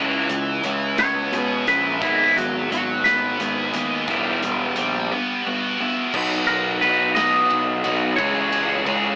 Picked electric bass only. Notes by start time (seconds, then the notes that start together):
Already playing: C#2
0.30 C#2
0.63 C#2
1.00 C#2
1.32 B2
1.67 A#1
2.02 G#1
2.35 G#1
2.71 G#1
3.06 G#1
3.39 G#1
3.75 D#2
4.08 E1
4.44 E1
4.78 A#1
6.14 B1
6.49 B1
6.83 B1
7.51 B1
7.86 B1
8.19 C#2
8.85 C#2